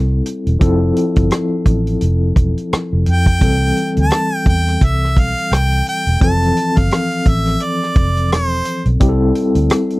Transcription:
Already playing: fingered electric bass C2, tine electric piano G3 C4 E4 A4
0.26 closed hi-hat
0.47 fingered electric bass E1, closed hi-hat
0.59 fingered electric bass F1, tine electric piano F3 C4 E4 A4, kick, closed hi-hat
0.96 closed hi-hat
1.16 fingered electric bass G1, kick, closed hi-hat
1.31 cross-stick, closed hi-hat
1.66 fingered electric bass A1, kick, closed hi-hat
1.87 closed hi-hat
2.01 fingered electric bass F1, closed hi-hat
2.36 fingered electric bass E1, kick, closed hi-hat
2.58 closed hi-hat
2.73 muted fingered electric bass stroke, cross-stick, closed hi-hat
2.93 fingered electric bass F1
3.06 fingered electric bass F2, closed hi-hat
3.10 harmonica G5
3.26 kick, closed hi-hat
3.40 fingered electric bass C2, tine electric piano E3 G3 C4 A4, kick, closed hi-hat
3.77 closed hi-hat
3.97 fingered electric bass D2, closed hi-hat
4.01 harmonica A5
4.11 cross-stick, closed hi-hat
4.46 fingered electric bass E2, harmonica G5, kick, closed hi-hat
4.67 cross-stick, closed hi-hat
4.81 fingered electric bass C2, harmonica E5, kick, closed hi-hat
5.05 cross-stick
5.17 fingered electric bass B1, harmonica F5, kick, closed hi-hat
5.38 closed hi-hat
5.52 fingered electric bass C2, harmonica G5, cross-stick, closed hi-hat
5.72 closed hi-hat
5.87 harmonica G5, closed hi-hat
6.07 fingered electric bass E1, closed hi-hat
6.21 fingered electric bass F1, tine electric piano E3 F3 C4 A4, harmonica A5, kick, closed hi-hat
6.43 closed hi-hat
6.57 closed hi-hat
6.77 fingered electric bass G1, harmonica F5, kick, closed hi-hat
6.91 cross-stick, closed hi-hat
7.11 closed hi-hat
7.26 fingered electric bass A1, harmonica E5, kick, closed hi-hat
7.46 cross-stick, closed hi-hat
7.60 harmonica D5, closed hi-hat
7.83 cross-stick
7.95 fingered electric bass F1, kick, closed hi-hat
8.17 closed hi-hat
8.31 fingered electric bass E1, harmonica C5, cross-stick, closed hi-hat
8.65 closed hi-hat
8.86 fingered electric bass B1, closed hi-hat
9.00 tine electric piano G3 C4 E4 G4, kick, closed hi-hat
9.09 tine electric piano A4
9.35 closed hi-hat
9.55 fingered electric bass D2, closed hi-hat
9.70 cross-stick, closed hi-hat
9.90 closed hi-hat

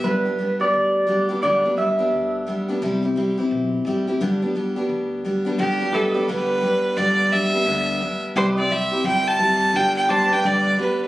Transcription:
0.04 upright bass G1, steel-string acoustic guitar G2 D3 G3 B3 D4 G4, clean electric guitar B4
0.25 steel-string acoustic guitar G3 B3 D4 G4
0.38 steel-string acoustic guitar G3 B3 D4 G4
0.60 steel-string acoustic guitar G3 B3 D4 G4, clean electric guitar D5
0.74 upright bass D2
1.07 steel-string acoustic guitar G3 B3 D4 G4
1.29 steel-string acoustic guitar G3 B3 D4 G4
1.42 upright bass G1, steel-string acoustic guitar G2 D3 G3 B3 D4 G4, clean electric guitar D5
1.64 steel-string acoustic guitar G3 B3 D4 G4
1.77 steel-string acoustic guitar G3 B3 D4 G4, clean electric guitar E5
1.99 steel-string acoustic guitar G3 B3 D4 G4
2.12 upright bass D2
2.47 steel-string acoustic guitar G3 B3 D4 G4
2.68 steel-string acoustic guitar G3 B3 D4 G4
2.82 upright bass C2, steel-string acoustic guitar C3 G3 C4 E4 G4
3.03 steel-string acoustic guitar C4 E4 G4
3.16 steel-string acoustic guitar G3 C4 E4 G4
3.38 steel-string acoustic guitar C4 E4 G4
3.51 upright bass B1
3.85 upright bass A1, steel-string acoustic guitar G3 C4 E4 G4
4.07 steel-string acoustic guitar C4 E4 G4
4.20 upright bass G1, steel-string acoustic guitar G2 D3 G3 B3 D4 G4
4.42 steel-string acoustic guitar G3 B3 D4 G4
4.55 steel-string acoustic guitar G3 B3 D4 G4
4.76 steel-string acoustic guitar G3 B3 D4 G4
4.89 upright bass D2
5.25 steel-string acoustic guitar G3 B3 D4 G4
5.45 steel-string acoustic guitar G3 B3 D4 G4
5.58 upright bass G1, steel-string acoustic guitar G2 D3 G3 B3 D4 G4, fiddle G4
5.80 steel-string acoustic guitar G3 B3 D4 G4
5.93 steel-string acoustic guitar G3 B3 D4 G4, pedal steel guitar G4 B4 E5, fiddle A4
6.14 steel-string acoustic guitar G3 B3 D4 G4
6.20 pedal steel guitar D5
6.28 upright bass D2, steel-string acoustic guitar G2 D3 G3 B3 D4 G4, fiddle B4
6.62 steel-string acoustic guitar G3 B3 D4 G4
6.96 upright bass G1, steel-string acoustic guitar G2 D3 G3 B3 D4 G4, fiddle D5
7.32 steel-string acoustic guitar G3 B3 D4 G4, fiddle E5
7.53 steel-string acoustic guitar G3 B3 D4 G4
7.66 upright bass D2, steel-string acoustic guitar G2 D3 G3 B3 D4 G4
8.01 steel-string acoustic guitar G3 B3 D4 G4
8.36 upright bass C2, steel-string acoustic guitar C3 G3 C4 E4 G4, pedal steel guitar G4 B4 D5, fiddle C5
8.57 steel-string acoustic guitar C4 E4 G4, pedal steel guitar C5, fiddle D5
8.63 pedal steel guitar E5
8.69 steel-string acoustic guitar G3 C4 E4 G4, fiddle E5
8.92 steel-string acoustic guitar C4 E4 G4
9.04 upright bass G1, steel-string acoustic guitar C3 G3 C4 E4 G4, fiddle G5
9.27 fiddle A5
9.39 steel-string acoustic guitar G3 C4 E4 G4
9.74 upright bass G1, steel-string acoustic guitar G2 D3 G3 B3 D4 G4, fiddle G5
9.97 fiddle G5
10.08 steel-string acoustic guitar G3 B3 D4 G4, pedal steel guitar G4 C5 D5, fiddle A5
10.30 steel-string acoustic guitar G3 B3 D4 G4, pedal steel guitar B4, fiddle G5
10.43 upright bass D2, steel-string acoustic guitar G2 D3 G3 B3 D4 G4, fiddle D5
10.77 steel-string acoustic guitar G3 B3 D4 G4, fiddle B4

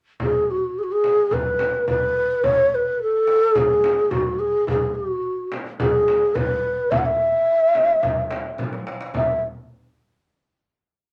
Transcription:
0.20 ney G#4, darbuka dum, frame drum
0.51 ney F#4
0.79 ney G#4
0.83 ney F#4
0.92 ney G#4
1.04 darbuka tek, frame drum
1.31 ney B4, frame drum, darbuka dum
1.59 darbuka tek, frame drum
1.88 ney B4, frame drum, darbuka dum
2.30 darbuka ka
2.43 ney C#5, darbuka dum, frame drum
2.75 ney B4
3.02 ney A4
3.27 darbuka tek
3.55 ney G#4, darbuka dum, frame drum
3.84 darbuka tek, frame drum
4.11 ney F#4, frame drum, darbuka dum
4.39 ney G#4
4.54 darbuka ka
4.67 ney G#4, darbuka dum, frame drum
4.95 ney F#4
5.52 darbuka tek, frame drum
5.80 ney G#4, frame drum, darbuka dum
6.08 darbuka tek, frame drum
6.35 ney B4, frame drum, darbuka dum
6.78 darbuka ka
6.91 ney E5, frame drum, darbuka dum
6.98 ney F#5
7.06 ney E5
7.34 darbuka ka
7.75 darbuka tek, frame drum
8.03 frame drum, darbuka dum
8.31 darbuka tek, frame drum
8.58 darbuka tek, frame drum
8.73 darbuka ka
8.87 darbuka tek
9.01 darbuka ka
9.14 ney E5, darbuka dum, frame drum

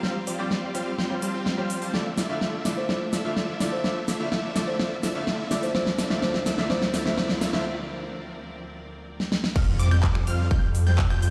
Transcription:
Already playing: string section F3 C4 G4 F5
0.03 grand piano G3 C4 F4 C5, supersaw synth G3 C4 F4 C5 F5, snare
0.27 supersaw synth G3 C4 F4 C5 D5, open hi-hat
0.38 grand piano G3 C4 F4 D5, supersaw synth G3 C4 F4 C5 G5
0.51 supersaw synth G3 C4 F4 C5 D5, snare
0.74 grand piano G3 C4 F4 C5, supersaw synth G3 C4 F4 C5 F5, open hi-hat
0.98 supersaw synth G3 C4 F4 C5 G5, snare
1.10 grand piano G3 C4 F4 C5
1.22 grand piano G3 C4 F4 C5, supersaw synth G3 C4 F4 C5 A5, open hi-hat
1.34 supersaw synth G3 C4 F4 C5 G5
1.46 snare
1.57 grand piano G3 C4 F4 C5, supersaw synth G3 C4 F4 C5 F5
1.70 open hi-hat
1.82 supersaw synth G3 C4 F4 C5 A5, open hi-hat
1.93 grand piano D3 A3 E4 F4 D5, supersaw synth A3 E4 F4 D5 E5, string section D4 A4 E5, snare, riser
2.18 supersaw synth A3 E4 F4 D5 E5, snare, open hi-hat
2.29 grand piano D3 A3 E4 F4 E5, supersaw synth A3 E4 F4 D5 F5
2.41 supersaw synth A3 E4 F4 D5 E5, snare
2.65 grand piano D3 A3 E4 F4 D5, supersaw synth A3 E4 F4 D5 E5, snare, open hi-hat
2.77 marimba C5
2.88 grand piano D3 A3 E4 F4 D5, supersaw synth A3 E4 F4 D5 E5, snare
3.13 supersaw synth A3 E4 F4 D5 E5, snare, open hi-hat
3.24 grand piano D3 A3 E4 F4 E5, supersaw synth A3 E4 F4 D5 F5
3.37 supersaw synth A3 E4 F4 D5 E5, snare
3.60 grand piano D3 A3 E4 F4 D5, supersaw synth A3 E4 F4 D5 E5, snare, open hi-hat
3.72 marimba C5
3.84 grand piano D3 A3 E4 F4 D5, supersaw synth A3 E4 F4 D5 E5, snare
4.08 supersaw synth A3 E4 F4 D5 E5, snare, open hi-hat
4.19 grand piano D3 A3 E4 F4 E5, supersaw synth A3 E4 F4 D5 F5
4.32 supersaw synth A3 E4 F4 D5 E5, snare
4.55 grand piano D3 A3 E4 F4 D5, supersaw synth A3 E4 F4 D5 E5, snare, open hi-hat
4.67 marimba C5
4.79 grand piano D3 A3 E4 F4 D5, supersaw synth A3 E4 F4 D5 E5, snare
5.03 supersaw synth A3 E4 F4 D5 E5, snare, open hi-hat
5.15 grand piano D3 A3 E4 F4 E5, supersaw synth A3 E4 F4 D5 F5
5.27 supersaw synth A3 E4 F4 D5 E5, snare
5.50 grand piano D3 A3 E4 F4 D5, supersaw synth A3 E4 F4 D5 E5, snare, open hi-hat
5.63 marimba C5, open hi-hat
5.74 string section D2 F3 C4 A#4 D5, grand piano D3 A3 E4 F4 D5, supersaw synth A3 E4 F4 D5 E5, marimba C5, snare
5.87 snare
5.99 supersaw synth A3 E4 F4 D5 E5, snare, open hi-hat
6.10 grand piano D3 A3 E4 F4 E5, supersaw synth A3 E4 F4 D5 F5, snare
6.22 grand piano D3 A3 E4 F4 D5, supersaw synth A3 E4 F4 D5 E5, marimba C5, snare
6.34 snare
6.46 supersaw synth A3 E4 F4 D5 E5, snare, open hi-hat
6.57 grand piano D3 A3 E4 F4 E5, supersaw synth A3 E4 F4 D5 F5, snare
6.69 grand piano D3 A3 E4 F4 D5, supersaw synth A3 E4 F4 D5 E5, marimba C5, snare
6.82 snare
6.94 supersaw synth A3 E4 F4 D5 E5, snare, open hi-hat
7.05 grand piano D3 A3 E4 F4 E5, supersaw synth A3 E4 F4 D5 F5, snare
7.17 grand piano D3 A3 E4 F4 D5, supersaw synth A3 E4 F4 D5 E5, marimba C5, snare
7.29 snare
7.41 supersaw synth A3 E4 F4 D5 E5, snare, open hi-hat
7.53 grand piano D3 A3 E4 F4 E5, supersaw synth A3 E4 F4 D5 F5, snare
9.20 snare
9.32 snare
9.44 snare
9.56 detuned saw bass F2, supersaw synth G3 C4 F4 C5 F5, synth pluck F6, kick, crash, impact
9.79 detuned saw bass F2, supersaw synth G3 C4 F4 C5 D5, synth pluck D6, open hi-hat
9.91 detuned saw bass F2, supersaw synth G3 C4 F4 C5 G5, synth pluck G6, finger snap
10.03 detuned saw bass F2, supersaw synth G3 C4 F4 C5, synth pluck D6, kick, clap
10.15 finger snap
10.27 detuned saw bass F2, supersaw synth G3 C4 F4 C5 F5, synth pluck F6, open hi-hat
10.51 detuned saw bass F2, supersaw synth G3 C4 F4 C5 G5, synth pluck G6, kick
10.75 open hi-hat
10.87 detuned saw bass F2, supersaw synth G3 C4 F4 C5 G5, synth pluck G6
10.98 kick, clap
11.10 detuned saw bass F2, supersaw synth G3 C4 F4 C5 G5, synth pluck G6, finger snap
11.22 detuned saw bass F2, supersaw synth G3 C4 F4 C5 G5, synth pluck G6, open hi-hat

